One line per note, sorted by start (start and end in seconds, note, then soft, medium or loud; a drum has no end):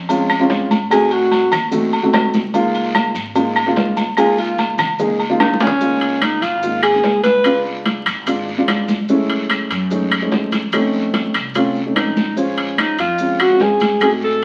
0.00 0.46 F2 loud
0.09 0.31 G#3 loud
0.09 0.30 C4 medium
0.09 0.31 C#4 medium
0.09 0.31 F4 loud
0.09 high conga soft
0.09 low agogo loud
0.09 long guiro medium
0.09 maracas medium
0.30 high conga soft
0.30 low agogo loud
0.30 claves medium
0.30 maracas soft
0.39 0.75 G#3 medium
0.39 0.76 C4 medium
0.39 0.76 C#4 medium
0.39 0.76 F4 loud
0.49 1.46 G#2 medium
0.49 high conga medium
0.49 low timbale medium
0.49 short guiro medium
0.49 maracas soft
0.71 high conga medium
0.71 low agogo medium
0.71 short guiro medium
0.71 maracas medium
0.90 1.48 A3 medium
0.90 1.48 C4 medium
0.90 1.48 D#4 medium
0.90 1.48 F#4 loud
0.90 1.14 G#4 loud
0.90 high conga soft
0.90 low agogo loud
0.90 long guiro medium
0.90 claves medium
0.90 maracas medium
1.11 1.53 F#4 medium
1.11 high conga soft
1.11 low agogo medium
1.11 maracas soft
1.31 high conga medium
1.31 low timbale medium
1.31 low agogo medium
1.31 short guiro medium
1.31 maracas soft
1.52 2.09 D#2 loud
1.52 high conga soft
1.52 low conga medium
1.52 low agogo loud
1.52 short guiro medium
1.52 claves medium
1.52 maracas medium
1.71 1.93 A3 loud
1.71 1.93 C4 medium
1.71 1.93 D#4 medium
1.71 1.94 F#4 loud
1.71 high conga soft
1.71 low conga medium
1.71 long guiro medium
1.71 maracas medium
1.93 high conga soft
1.93 low agogo loud
1.93 maracas soft
2.03 2.39 A3 medium
2.03 2.39 C4 medium
2.03 2.39 D#4 medium
2.03 2.39 F#4 loud
2.13 3.09 C#2 loud
2.13 high conga medium
2.13 low timbale loud
2.13 low agogo loud
2.13 short guiro medium
2.13 claves medium
2.13 maracas soft
2.34 high conga loud
2.34 short guiro medium
2.34 maracas medium
2.54 3.11 G#3 loud
2.54 3.11 A#3 loud
2.54 3.11 D#4 loud
2.54 3.11 F4 loud
2.54 high conga soft
2.54 low agogo medium
2.54 long guiro medium
2.54 maracas medium
2.75 high conga soft
2.75 low agogo medium
2.75 maracas soft
2.95 high conga loud
2.95 low timbale medium
2.95 low agogo loud
2.95 short guiro medium
2.95 claves medium
2.95 maracas soft
3.15 3.72 G#1 loud
3.15 high conga soft
3.15 short guiro medium
3.15 maracas medium
3.35 3.57 G#3 loud
3.35 3.57 A#3 medium
3.35 3.57 D#4 medium
3.35 3.57 F4 medium
3.35 high conga soft
3.35 low agogo medium
3.35 long guiro medium
3.35 maracas medium
3.56 high conga soft
3.56 low agogo loud
3.56 claves medium
3.56 maracas soft
3.66 4.02 G#3 medium
3.66 4.02 A#3 medium
3.66 4.02 D#4 medium
3.66 4.02 F4 loud
3.76 4.72 C#2 loud
3.76 high conga medium
3.76 low timbale medium
3.76 short guiro medium
3.76 maracas soft
3.97 high conga medium
3.97 low agogo medium
3.97 short guiro medium
3.97 maracas medium
4.17 4.75 G#3 medium
4.17 4.75 A#3 medium
4.17 4.75 D#4 medium
4.17 4.75 F4 loud
4.17 4.37 G#4 loud
4.17 high conga soft
4.17 low agogo loud
4.17 long guiro medium
4.17 claves medium
4.17 maracas medium
4.38 4.77 F4 medium
4.38 high conga soft
4.38 low agogo medium
4.38 maracas soft
4.58 high conga medium
4.58 low timbale medium
4.58 low agogo medium
4.58 short guiro medium
4.58 maracas soft
4.78 5.36 C#2 loud
4.78 high conga soft
4.78 low conga medium
4.78 low agogo loud
4.78 short guiro medium
4.78 claves medium
4.78 maracas medium
4.99 5.21 G#3 medium
4.99 5.21 A#3 medium
4.99 5.21 D#4 medium
4.99 5.21 G#4 loud
4.99 high conga soft
4.99 low conga medium
4.99 long guiro medium
4.99 maracas medium
5.19 high conga soft
5.19 low agogo medium
5.19 maracas soft
5.30 5.65 G#3 medium
5.30 5.66 A#3 medium
5.30 5.66 D#4 medium
5.30 5.66 F4 loud
5.40 6.36 C#2 loud
5.40 5.60 D#4 medium
5.40 high conga medium
5.40 high timbale medium
5.40 low agogo loud
5.40 short guiro medium
5.40 claves medium
5.40 maracas soft
5.54 high conga medium
5.60 6.24 C#4 loud
5.60 low timbale loud
5.60 short guiro medium
5.60 maracas medium
5.67 low conga loud
5.80 6.38 G#3 medium
5.80 6.38 A#3 medium
5.80 6.38 D#4 medium
5.80 6.38 F4 medium
5.80 high conga soft
5.80 long guiro medium
5.80 maracas medium
6.01 high conga soft
6.01 high timbale medium
6.01 maracas soft
6.22 6.44 D#4 medium
6.22 high conga medium
6.22 high timbale loud
6.22 low timbale medium
6.22 short guiro medium
6.22 claves medium
6.22 maracas soft
6.42 6.99 G#1 loud
6.42 6.82 F4 medium
6.42 high conga soft
6.42 high timbale medium
6.42 short guiro medium
6.42 maracas medium
6.63 6.85 G#3 medium
6.63 6.85 A#3 medium
6.63 6.85 D#4 medium
6.63 6.85 F4 medium
6.63 high conga soft
6.63 long guiro medium
6.63 maracas medium
6.83 7.21 G#4 loud
6.83 high conga soft
6.83 high timbale medium
6.83 claves medium
6.83 maracas soft
6.94 7.30 G#3 medium
6.94 7.30 A#3 medium
6.94 7.30 D#4 medium
6.94 7.30 G#4 medium
7.03 8.00 C#2 medium
7.03 high conga medium
7.03 low timbale medium
7.03 short guiro medium
7.03 maracas soft
7.24 7.62 B4 loud
7.24 high conga medium
7.24 high timbale medium
7.24 short guiro medium
7.24 maracas medium
7.44 8.02 G#3 medium
7.44 8.02 B3 medium
7.44 8.02 D4 medium
7.44 8.03 F4 medium
7.44 high conga soft
7.44 high timbale medium
7.44 long guiro medium
7.44 claves medium
7.44 maracas medium
7.66 high conga soft
7.66 maracas soft
7.86 high conga medium
7.86 high timbale medium
7.86 low timbale medium
7.86 short guiro medium
7.86 maracas soft
8.06 8.64 G#1 medium
8.06 high conga soft
8.06 high timbale medium
8.06 short guiro medium
8.06 claves medium
8.06 maracas medium
8.27 8.49 G#3 medium
8.27 8.49 B3 medium
8.27 8.49 D4 medium
8.27 8.49 F4 medium
8.27 high conga soft
8.27 high timbale medium
8.27 long guiro medium
8.27 maracas medium
8.48 high conga soft
8.48 maracas soft
8.58 8.94 G#3 medium
8.58 8.94 B3 medium
8.58 8.94 D4 medium
8.58 8.94 F4 medium
8.67 9.64 F#1 medium
8.67 high conga medium
8.67 high timbale medium
8.67 low timbale medium
8.67 short guiro medium
8.67 claves medium
8.67 maracas soft
8.88 high conga medium
8.88 short guiro medium
8.88 maracas medium
9.09 9.67 G#3 loud
9.09 9.67 A3 medium
9.09 9.67 C#4 medium
9.09 9.67 E4 loud
9.09 high conga soft
9.09 long guiro medium
9.09 maracas medium
9.30 high conga soft
9.30 high timbale medium
9.30 maracas soft
9.50 high conga medium
9.50 high timbale medium
9.50 low timbale medium
9.50 short guiro medium
9.50 claves medium
9.50 maracas soft
9.70 10.28 F#2 loud
9.70 high conga soft
9.70 high timbale medium
9.70 short guiro medium
9.70 maracas medium
9.91 10.12 G#3 medium
9.91 10.13 A3 medium
9.91 10.12 C#4 medium
9.91 10.13 D#4 loud
9.91 high conga soft
9.91 long guiro medium
9.91 maracas medium
10.11 high conga soft
10.11 high timbale medium
10.11 claves medium
10.11 maracas soft
10.22 10.58 G#3 medium
10.22 10.58 A3 medium
10.22 10.58 C#4 medium
10.22 10.58 D#4 medium
10.31 11.28 F2 medium
10.31 high conga medium
10.31 low timbale medium
10.31 short guiro medium
10.31 maracas soft
10.52 high conga medium
10.52 high timbale medium
10.52 short guiro medium
10.52 maracas medium
10.72 11.31 A3 loud
10.72 11.31 C4 medium
10.72 11.31 C#4 medium
10.72 11.31 D#4 loud
10.72 high conga soft
10.72 high timbale medium
10.72 long guiro medium
10.72 claves medium
10.72 maracas medium
10.93 high conga soft
10.93 maracas soft
11.14 high conga medium
11.14 high timbale medium
11.14 low timbale medium
11.14 short guiro medium
11.14 maracas soft
11.34 11.92 C2 loud
11.34 high conga soft
11.34 high timbale medium
11.34 short guiro medium
11.34 claves medium
11.34 maracas medium
11.54 11.77 A3 medium
11.54 11.77 C4 medium
11.54 11.77 C#4 medium
11.54 11.77 F4 loud
11.54 high conga soft
11.54 high timbale medium
11.54 long guiro medium
11.54 maracas loud
11.75 high conga soft
11.75 maracas soft
11.86 12.22 A3 medium
11.86 12.22 C4 medium
11.86 12.22 C#4 medium
11.86 12.22 D#4 medium
11.95 12.92 A#1 medium
11.95 12.34 D#4 medium
11.95 high conga medium
11.95 high timbale medium
11.95 low timbale medium
11.95 short guiro medium
11.95 claves medium
11.95 maracas soft
12.17 high conga medium
12.17 short guiro medium
12.17 maracas medium
12.36 12.94 G#3 medium
12.36 12.94 C#4 medium
12.36 12.80 C#4 medium
12.36 12.95 F4 medium
12.36 12.94 C5 medium
12.36 high conga soft
12.36 long guiro medium
12.36 maracas medium
12.57 high conga soft
12.57 high timbale medium
12.57 maracas soft
12.78 12.99 D#4 medium
12.78 high conga medium
12.78 high timbale medium
12.78 low timbale medium
12.78 short guiro medium
12.78 claves medium
12.78 maracas soft
12.98 13.56 F2 medium
12.98 13.42 F4 medium
12.98 high conga soft
12.98 high timbale medium
12.98 short guiro medium
12.98 maracas medium
13.18 13.41 G#3 medium
13.18 13.41 C4 medium
13.18 13.41 C#4 medium
13.18 13.41 F4 medium
13.18 high conga soft
13.18 long guiro medium
13.18 maracas medium
13.39 13.63 F#4 loud
13.39 high conga soft
13.39 high timbale medium
13.39 claves medium
13.39 maracas soft
13.50 13.86 G#3 medium
13.50 13.86 C4 medium
13.50 13.86 C#4 medium
13.50 13.86 F4 medium
13.59 14.44 G#2 medium
13.59 14.02 G#4 medium
13.59 high conga medium
13.59 low timbale medium
13.59 short guiro medium
13.59 maracas soft
13.80 high conga medium
13.80 high timbale medium
13.80 short guiro medium
13.80 maracas medium
14.01 14.44 A3 medium
14.01 14.44 C4 medium
14.01 14.44 D#4 medium
14.01 14.44 F#4 medium
14.01 14.12 G#4 medium
14.01 high conga soft
14.01 high timbale medium
14.01 long guiro medium
14.01 claves medium
14.01 maracas medium
14.22 14.44 A4 medium
14.22 high conga soft
14.22 maracas soft